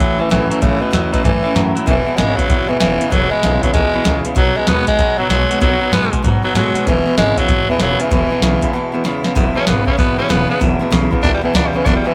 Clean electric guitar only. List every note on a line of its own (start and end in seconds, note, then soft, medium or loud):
0.00 0.17 A2 medium
0.00 0.17 E3 medium
0.19 0.29 A2 medium
0.19 0.30 E3 medium
0.31 0.49 A2 medium
0.31 0.49 F#3 medium
0.50 0.60 A2 medium
0.50 0.60 F#3 medium
0.61 0.79 A2 medium
0.61 0.80 E3 medium
0.81 0.91 A2 medium
0.81 0.92 E3 medium
0.93 1.11 A2 medium
0.93 1.11 F#3 medium
1.12 1.22 A2 medium
1.12 1.23 F#3 medium
1.24 1.42 A2 medium
1.24 1.42 E3 medium
1.43 1.54 A2 medium
1.43 1.54 E3 medium
1.55 1.73 A2 medium
1.55 1.73 F#3 medium
1.75 1.85 A2 medium
1.75 1.86 F#3 medium
1.87 2.05 E2 medium
1.87 2.05 B2 medium
2.06 2.17 E2 medium
2.06 2.17 B2 medium
2.18 2.36 E2 medium
2.18 2.36 C#3 loud
2.39 2.47 E2 medium
2.39 2.49 C#3 medium
2.48 2.67 E2 medium
2.48 2.67 B2 medium
2.68 2.79 E2 medium
2.68 2.79 B2 medium
2.80 2.98 E2 medium
2.80 2.98 C#3 medium
3.01 3.11 E2 medium
3.01 3.11 C#3 medium
3.13 3.30 E2 medium
3.13 3.30 B2 medium
3.32 3.42 E2 medium
3.32 3.42 B2 medium
3.44 3.61 E2 medium
3.44 3.61 C#3 medium
3.63 3.73 E2 medium
3.63 3.73 C#3 medium
3.75 3.92 E2 medium
3.75 3.92 B2 medium
3.95 4.03 E2 medium
3.95 4.05 B2 loud
4.05 4.23 E2 medium
4.05 4.23 C#3 medium
4.26 4.36 E2 medium
4.26 4.36 C#3 medium
4.37 4.54 B2 medium
4.37 4.55 F#3 medium
4.57 4.67 B2 medium
4.57 4.67 F#3 medium
4.68 4.86 B2 medium
4.68 4.86 G#3 medium
4.88 4.98 B2 medium
4.88 4.98 G#3 medium
4.99 5.17 B2 medium
4.99 5.17 F#3 medium
5.19 5.29 B2 medium
5.19 5.29 F#3 medium
5.31 5.48 B2 medium
5.31 5.49 G#3 medium
5.50 5.60 B2 medium
5.50 5.61 G#3 medium
5.61 5.79 B2 medium
5.61 5.80 F#3 medium
5.81 5.91 B2 medium
5.81 5.91 F#3 medium
5.92 6.10 B2 medium
5.92 6.10 G#3 medium
6.12 6.22 B2 medium
6.12 6.23 G#3 medium
6.24 6.42 B2 medium
6.24 6.42 F#3 loud
6.44 6.54 B2 medium
6.44 6.54 F#3 loud
6.56 6.73 B2 medium
6.56 6.74 G#3 medium
6.75 6.85 B2 medium
6.75 6.86 G#3 medium
6.86 7.04 E2 medium
6.86 7.04 B2 loud
7.06 7.16 E2 medium
7.06 7.17 B2 medium
7.18 7.36 E2 medium
7.18 7.36 C#3 medium
7.38 7.48 E2 medium
7.38 7.48 C#3 medium
7.49 7.67 E2 medium
7.49 7.67 B2 medium
7.68 7.79 E2 medium
7.68 7.79 B2 medium
7.81 7.98 E2 medium
7.81 7.98 C#3 medium
8.00 8.09 E2 medium
8.00 8.10 C#3 medium
8.11 8.29 E2 medium
8.11 8.29 B2 medium
8.31 8.41 E2 medium
8.31 8.42 B2 medium
8.42 8.60 E2 medium
8.42 8.60 C#3 medium
8.62 8.72 E2 medium
8.62 8.73 C#3 medium
8.73 8.91 E2 medium
8.73 8.92 B2 medium
8.94 9.03 E2 medium
8.94 9.04 B2 medium
9.05 9.23 E2 medium
9.05 9.23 C#3 medium
9.25 9.35 E2 medium
9.25 9.35 C#3 medium
9.36 9.54 E2 medium
9.36 9.54 B2 medium
9.55 9.66 E2 medium
9.55 9.66 B2 medium
9.67 9.85 E2 medium
9.67 9.85 C#3 medium
9.87 9.97 E2 medium
9.87 9.97 C#3 medium
9.98 10.16 E2 medium
9.98 10.17 B2 medium
10.18 10.28 E2 medium
10.18 10.29 B2 medium
10.29 10.47 E2 medium
10.29 10.47 C#3 medium
10.49 10.59 E2 medium
10.49 10.60 C#3 medium
10.60 10.78 E2 medium
10.60 10.79 B2 loud
10.80 10.91 E2 medium
10.80 10.91 B2 medium
10.92 11.10 E2 medium
10.92 11.10 C#3 loud
11.12 11.22 E2 medium
11.12 11.22 C#3 medium
11.24 11.41 E2 medium
11.24 11.42 B2 loud
11.44 11.54 E2 medium
11.44 11.54 B2 loud
11.55 11.73 E2 medium
11.55 11.73 C#3 medium
11.75 11.85 E2 medium
11.75 11.85 C#3 loud
11.86 12.04 E2 medium
11.86 12.04 B2 loud
12.06 12.14 E2 medium
12.06 12.14 B2 medium